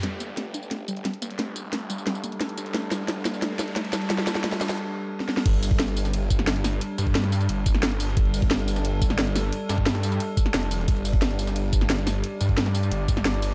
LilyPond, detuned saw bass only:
\new Staff \with { instrumentName = "Detuned saw bass" } { \clef bass \time 4/4 \key c \dorian \tempo 4 = 177 g,,8 g,,2~ g,,8 r8 g,,8~ | g,,4 g,,4. r4 g,,8 | g,,8 g,,2~ g,,8 r8 g,,8~ | g,,4 r2. |
g,,2~ g,,8 g,,4. | r8 g,4. g,,2 | g,,2~ g,,8 g,,4. | r8 g,4. r4 f,,4 |
g,,2~ g,,8 g,,4. | r8 g,4. g,,2 | }